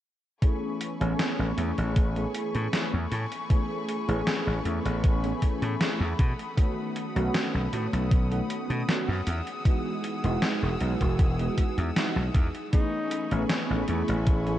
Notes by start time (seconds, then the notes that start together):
0.42 E3 A3 B3 C#4 G#4 G#5 B5 C#6, kick, closed hi-hat
0.81 closed hi-hat
1.00 A1 E3 A3 B3 C#4 G#4, closed hi-hat
1.19 snare, closed hi-hat
1.39 A1
1.57 E2 E3 A3 B3 C#4 G#4, closed hi-hat
1.78 A1, closed hi-hat
1.96 kick, closed hi-hat
2.16 E3 A3 B3 C#4 G#4, closed hi-hat
2.34 closed hi-hat
2.55 A2, closed hi-hat
2.72 E3 A3 B3 C#4 G#4, snare, closed hi-hat
2.93 E2
3.11 A2, closed hi-hat
3.32 closed hi-hat
3.49 E3 A3 B3 C#4 G#4, kick, closed hi-hat
3.88 closed hi-hat
4.07 A1 E3 A3 B3 C#4 G#4, closed hi-hat
4.27 snare, closed hi-hat
4.47 A1
4.64 E2 E3 A3 B3 C#4 G#4, closed hi-hat
4.85 A1, closed hi-hat
5.04 kick, closed hi-hat
5.23 E3 A3 B3 C#4 G#4, closed hi-hat
5.42 kick, closed hi-hat
5.62 A2, closed hi-hat
5.80 E3 A3 B3 C#4 G#4, snare, closed hi-hat
6.00 E2
6.19 B2 F#5 D#6, kick, closed hi-hat
6.39 closed hi-hat
6.57 D#3 A3 B3 C#4 F#4, kick, closed hi-hat
6.96 closed hi-hat
7.15 B1 D#3 A3 B3 C#4 F#4, closed hi-hat
7.34 snare, closed hi-hat
7.54 B1
7.72 A2 D#3 A3 B3 C#4 F#4, closed hi-hat
7.93 B1, closed hi-hat
8.11 kick, closed hi-hat
8.30 D#3 A3 B3 C#4 F#4, closed hi-hat
8.50 closed hi-hat
8.70 B2, closed hi-hat
8.87 D#3 A3 B3 C#4 F#4, snare, closed hi-hat
9.08 F#2
9.27 E2 G#4 E6, closed hi-hat
9.47 closed hi-hat
9.65 E3 G#3 B3 D#4 F#4, kick, closed hi-hat
10.04 closed hi-hat
10.23 E1 E3 G#3 B3 D#4 F#4, closed hi-hat
10.42 snare, closed hi-hat
10.62 E1
10.80 B1 E3 G#3 B3 D#4 F#4, closed hi-hat
11.01 E1, kick, closed hi-hat
11.19 kick, closed hi-hat
11.39 E3 G#3 B3 D#4 F#4, closed hi-hat
11.58 kick, closed hi-hat
11.78 E2, closed hi-hat
11.96 E3 G#3 B3 D#4 F#4, snare, closed hi-hat
12.16 B1
12.35 E2, kick, closed hi-hat
12.55 closed hi-hat
12.72 E3 A3 B3 C#4 D#4 G#4 G#5 B5 C#6, kick, closed hi-hat
13.11 closed hi-hat
13.31 A1 E3 A3 B3 C#4 G#4, closed hi-hat
13.50 snare, closed hi-hat
13.70 A1
13.88 E2 E3 A3 B3 C#4 E4 G#4, closed hi-hat
14.08 A1, closed hi-hat
14.27 kick, closed hi-hat
14.46 E3 A3 B3 C#4 G#4, closed hi-hat